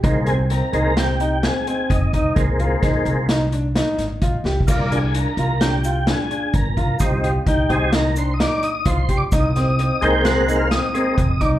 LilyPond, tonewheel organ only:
<<
  \new Staff \with { instrumentName = "Tonewheel organ" } { \time 5/4 \key aes \lydian \tempo 4 = 129 r8 aes'8 bes'4 g'4 aes'4 ees'4 | r1 r4 | r8 aes'8 bes'4 g'4 aes'4 bes'4 | r4 g'8 aes'8 bes'8 c''16. ees''32 d''8 ees''8 \tuplet 3/2 { c''4 d''8 } |
ees''4. g''8 \tuplet 3/2 { fis''4 f''8 } ees''4. d''8 | }
  \new Staff \with { instrumentName = "Tonewheel organ" } { \time 5/4 \key aes \lydian <aes bes c'>8 r4 <aes bes c'>8 r2. | <aes bes c'>4. <aes bes c'>8 r2. | <f bes d'>8 r1 r8 | <g c' ees'>8 r4 <g c' ees'>8 r2. |
r4. <aes bes c'>4. r8 <aes bes c'>8 r4 | }
>>